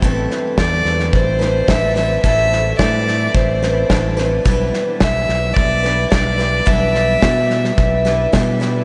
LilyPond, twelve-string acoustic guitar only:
\new Staff \with { instrumentName = "Twelve-string acoustic guitar" } { \time 4/4 \key a \minor \tempo 4 = 108 <a, e a c' e' b'>4 <a c' e' b'>4. <a c' e' b'>8 <a c' e' b'>8 <a c' e' b'>8 | <a, e a c' e' b'>4 <a c' e' b'>4. <a c' e' b'>8 <a c' e' b'>8 <a c' e' b'>8 | <b, e g d' e' b'>4 <g d' e' b'>4. <g d' e' b'>8 <g d' e' b'>8 <g d' e' b'>8 | <b, e g d' e' b'>4 <g d' e' b'>4. <g d' e' b'>8 <g d' e' b'>8 <g d' e' b'>8 | }